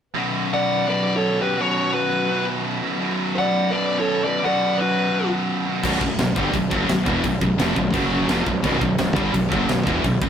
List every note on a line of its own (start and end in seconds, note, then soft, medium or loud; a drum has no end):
0.14 0.86 B1 medium
0.14 0.86 F#2 medium
0.14 0.89 B2 loud
0.14 5.79 D3 medium
0.14 5.80 F#3 medium
0.14 5.79 B3 medium
0.14 5.80 F#4 medium
0.14 5.80 B4 medium
0.54 0.86 D5 medium
0.54 0.86 F#5 medium
0.87 1.56 B1 medium
0.87 1.57 F#2 medium
0.87 1.59 B2 medium
0.87 1.13 B4 medium
0.87 1.15 D5 medium
1.16 1.40 A4 medium
1.16 1.41 C#5 medium
1.39 1.57 B1 medium
1.39 1.57 F#2 medium
1.39 1.59 B2 medium
1.39 1.58 G4 medium
1.39 1.61 B4 medium
1.57 2.30 B1 medium
1.57 2.28 F#2 medium
1.57 2.32 B2 medium
1.57 1.92 F#4 medium
1.61 1.93 C#5 medium
1.93 2.43 F#4 medium
1.93 2.43 B4 medium
2.30 2.99 B1 medium
2.30 2.99 F#2 medium
2.30 3.01 B2 medium
2.81 2.99 B1 medium
2.81 2.99 F#2 medium
2.81 3.01 B2 medium
2.99 3.70 B1 medium
2.99 3.70 F#2 loud
2.99 3.73 B2 loud
3.36 3.69 D5 medium
3.36 3.73 F#5 medium
3.71 4.43 B1 medium
3.71 4.41 F#2 medium
3.71 4.44 B2 medium
3.71 3.96 B4 medium
3.71 3.96 D5 medium
3.98 4.24 A4 medium
3.98 4.24 C#5 medium
4.23 4.42 B1 medium
4.23 4.41 F#2 medium
4.23 4.43 B2 medium
4.23 4.42 B4 medium
4.23 4.41 D5 medium
4.43 5.10 B1 medium
4.43 5.11 F#2 medium
4.43 5.12 B2 loud
4.43 4.77 D5 medium
4.43 4.80 F#5 loud
4.78 5.29 F#4 medium
4.78 5.27 B4 medium
5.11 5.81 B1 medium
5.11 5.82 F#2 medium
5.11 5.83 B2 medium
5.66 5.83 B1 medium
5.66 5.83 F#2 medium
5.66 5.82 B2 medium
5.84 6.00 B0 medium
5.84 6.01 B1 medium
5.84 6.01 F#2 loud
5.84 6.01 B2 loud
5.84 kick medium
5.84 crash loud
5.84 crash medium
6.01 6.17 B0 medium
6.01 6.16 B1 medium
6.01 6.16 F#2 medium
6.01 kick medium
6.19 6.35 B0 medium
6.19 6.33 B1 medium
6.19 6.34 F#2 medium
6.19 snare loud
6.19 crash medium
6.36 6.53 G1 medium
6.36 6.53 G2 medium
6.36 6.54 D3 medium
6.36 6.54 G3 loud
6.36 kick loud
6.53 6.70 B0 medium
6.53 6.67 B1 medium
6.53 6.68 F#2 medium
6.53 kick medium
6.53 crash medium
6.70 6.88 F#1 medium
6.70 6.87 F#2 medium
6.70 6.87 C#3 loud
6.70 6.88 F#3 medium
6.70 kick loud
6.87 7.05 B0 medium
6.87 7.02 B1 medium
6.87 7.02 F#2 medium
6.87 snare loud
6.87 crash medium
7.06 7.23 E1 medium
7.06 7.23 E2 medium
7.06 7.23 B2 medium
7.06 7.23 E3 loud
7.06 kick loud
7.23 7.40 B0 medium
7.23 7.38 B1 medium
7.23 7.38 F#2 medium
7.23 kick medium
7.23 crash medium
7.41 7.58 B0 medium
7.41 7.56 B1 medium
7.41 7.56 F#2 medium
7.41 kick medium
7.58 7.75 F1 loud
7.58 7.75 F2 medium
7.58 7.76 C3 medium
7.58 7.76 F3 loud
7.58 snare loud
7.58 crash medium
7.76 7.93 B0 medium
7.76 7.91 B1 medium
7.76 7.90 F#2 medium
7.76 kick medium
7.94 8.26 F#1 loud
7.94 8.28 F#2 medium
7.94 8.29 C#3 loud
7.94 8.29 F#3 loud
7.94 kick loud
7.94 crash medium
8.28 8.46 F1 medium
8.28 8.46 F2 loud
8.28 8.46 C3 loud
8.28 8.46 F3 loud
8.28 snare loud
8.28 crash medium
8.46 8.63 B0 medium
8.46 8.61 B1 medium
8.46 8.61 F#2 medium
8.46 kick medium
8.62 8.80 B0 medium
8.62 8.79 B1 loud
8.62 8.80 F#2 loud
8.62 8.80 B2 loud
8.62 kick loud
8.62 crash medium
8.81 8.98 B0 medium
8.81 8.95 B1 medium
8.81 8.96 F#2 medium
8.81 kick medium
8.98 9.15 B0 medium
8.98 9.13 B1 medium
8.98 9.13 F#2 medium
8.98 snare loud
8.98 crash medium
9.15 9.33 G1 loud
9.15 9.33 G2 medium
9.15 9.33 D3 medium
9.15 9.33 G3 loud
9.15 kick loud
9.34 9.51 B0 medium
9.34 9.48 B1 medium
9.34 9.48 F#2 medium
9.34 kick medium
9.34 crash medium
9.52 9.68 F#1 loud
9.52 9.69 F#2 medium
9.52 9.69 C#3 medium
9.52 9.69 F#3 loud
9.52 kick loud
9.66 9.86 B0 medium
9.66 9.83 B1 medium
9.66 9.82 F#2 medium
9.66 snare loud
9.66 crash medium
9.71 9.84 F#2 medium
9.86 10.03 E1 medium
9.86 10.04 E2 medium
9.86 10.04 B2 medium
9.86 10.04 E3 loud
9.86 kick loud
10.04 10.20 B0 medium
10.04 10.19 B1 medium
10.04 10.18 F#2 medium
10.04 kick medium
10.04 crash medium
10.21 10.29 B0 medium
10.21 10.29 B1 medium
10.21 10.29 F#2 medium
10.21 kick medium